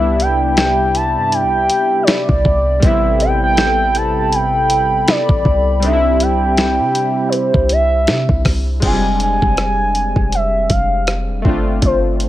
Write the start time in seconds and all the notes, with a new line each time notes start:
Already playing: C2 C3 G3 B3 D4 E4 G4 E5 B5
0.20 G5, closed hi-hat
0.43 G5
0.57 snare, closed hi-hat
0.95 A5, closed hi-hat
1.17 G2 A5
1.32 G5, closed hi-hat
1.44 C2
1.70 closed hi-hat
2.03 C#5
2.07 D5, snare, closed hi-hat
2.29 C2, kick
2.45 C2, kick
2.80 A1 C3 G3 B3 A4 G5 B5, kick, closed hi-hat
2.84 C4 E4 E5
3.20 G5, closed hi-hat
3.44 G5
3.57 snare, closed hi-hat
3.95 A5, closed hi-hat
4.19 A5
4.32 G5, closed hi-hat
4.70 closed hi-hat
5.08 D5, snare, closed hi-hat
5.29 A1, kick
5.45 C2, kick
5.80 G3 C4 G4 E5, closed hi-hat
5.84 D4 D#4 E5
5.93 E4
6.20 G5, closed hi-hat
6.57 snare, closed hi-hat
6.80 C3
6.95 closed hi-hat
7.29 B4, closed hi-hat
7.35 C5
7.54 C2, kick
7.69 E5, closed hi-hat
8.07 C3, snare, closed hi-hat
8.29 C2, kick
8.45 C2, kick, cross-stick, open hi-hat
8.80 F1 G#3 C4, kick, closed hi-hat, crash
8.85 D4 F4 G#5
8.93 G3
9.20 G#5, closed hi-hat
9.42 F1, kick
9.57 cross-stick, closed hi-hat
9.95 closed hi-hat
10.16 F1, kick
10.32 E5, closed hi-hat
10.70 F1 F5, kick, closed hi-hat
11.07 cross-stick, closed hi-hat
11.29 E1
11.42 G1 A3 C4, kick
11.47 D4 F4
11.82 G1 C5, kick, closed hi-hat
12.20 C5, closed hi-hat